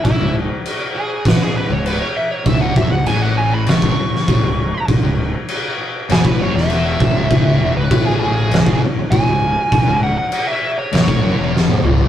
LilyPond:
<<
  \new Staff \with { instrumentName = "Lead electric guitar" } { \time 4/4 \key cis \minor \tempo 4 = 99 e'8 r4 gis'8 b'16 gis'16 b'16 cis''16 b'16 cis''16 e''16 cis''16 | e''16 fis''16 e''16 fis''16 gis''16 fis''16 gis''16 b''16 cis'''2 | r2 gis'16 b'16 cis''16 e''4~ e''16~ | e''8. b'8 gis'16 gis'4 r8 gis''4~ |
gis''8 fis''16 fis''8 e''8 cis''16 cis''4 r4 | }
  \new Staff \with { instrumentName = "Distorted electric guitar" } { \clef bass \time 4/4 \key cis \minor r16 cis,8 r2 cis,8 r8. | cis,8 e,16 cis,16 a,4 cis,16 cis,16 r8 a,16 cis,8 r16 | r16 cis,8 r4 r16 fis,16 a,16 fis,16 e,8. cis,8 | cis,8 e,16 cis,16 a,4 cis,16 cis,16 r8 a,16 cis,8 r16 |
r16 cis,8 r4 r16 fis,16 a,16 fis,16 e,8. cis,8 | }
  \new Staff \with { instrumentName = "Distorted electric guitar" } { \clef bass \time 4/4 \key cis \minor r16 cis,8 r2 cis,8 r8. | cis,8 e,16 cis,16 a,4 cis,16 cis,16 r8 a,16 cis,8 r16 | r16 cis,8 r4 r16 fis,16 a,16 fis,16 e,8. cis,8 | cis,8 e,16 cis,16 a,4 cis,16 cis,16 r8 a,16 cis,8 r16 |
r16 cis,8 r4 r16 fis,16 a,16 fis,16 e,8. cis,8 | }
  \new Staff \with { instrumentName = "Fingered electric bass" } { \clef bass \time 4/4 \key cis \minor r16 cis,,8 r2 cis,,8 r8. | cis,,8 e,,16 cis,,16 a,,4 cis,,16 cis,,16 r8 a,,16 cis,,8 r16 | r16 cis,,8 r4 r16 fis,,16 a,,16 fis,,16 e,,8. cis,,8 | cis,,8 e,,16 cis,,16 a,,4 cis,,16 cis,,16 r8 a,,16 cis,,8 r16 |
r16 cis,,8 r4 r16 fis,,16 a,,16 fis,,16 e,,8. cis,,8 | }
  \new DrumStaff \with { instrumentName = "Drums" } \drummode { \time 4/4 <cymc bd>4 cymc4 <cymc bd sn>4 cymc4 | <cymc bd>8 bd8 cymc4 <cymc sn>16 bd8 sn16 <cymc bd>4 | <cymc bd>4 cymc4 <cymc sn>16 bd8 sn16 cymc8 bd8 | <cymc bd>4 <cymc bd>4 <cymc sn>16 bd8. <cymc bd>4 |
<cymc bd>4 cymc4 <cymc sn>16 bd8. sn16 tommh16 toml16 tomfh16 | }
>>